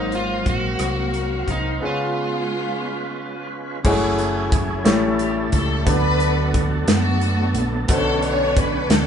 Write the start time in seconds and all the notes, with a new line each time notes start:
Already playing: G#1 G#2 F#3 A#3 C4 D#4 A#4 C5 F5
0.12 F4, closed hi-hat
0.46 A#1 A#3 C4 F#4, kick, closed hi-hat
0.79 C2, cross-stick, closed hi-hat
1.14 closed hi-hat
1.47 C2 D#4, kick, closed hi-hat
1.80 C#3 G#3 B3 C#4 F4 G#4 B4
1.84 G#3 B3 F4 C#5
3.83 F#1 F#3 G#3 A3 C#4 E4 F#4 G4 G#4 C#5, kick, crash
3.90 A3 G#4
4.19 closed hi-hat
4.52 kick, closed hi-hat
4.84 A1 A2 G3 A3 C#4 E4 G4 A4 C#5, snare, clap, closed hi-hat
5.19 G4, closed hi-hat
5.52 C#2 A4, kick, closed hi-hat
5.85 D2 D3 F#3 A3 B3 D4 F#4 G#4 A4 B4 D5, kick, closed hi-hat
5.94 A4
6.20 closed hi-hat
6.54 kick, closed hi-hat
6.87 F#2 B3 F#4, snare, clap, closed hi-hat
6.92 A3
7.21 closed hi-hat
7.54 A#1, closed hi-hat
7.88 B1 B2 D3 A3 B3 C#4 D4 F#4 A4 C5 C#5, kick, closed hi-hat
7.97 C#5
8.22 C#5, closed hi-hat
8.56 B4, kick, closed hi-hat
8.89 D2 C#4 D4 A4, snare, clap, closed hi-hat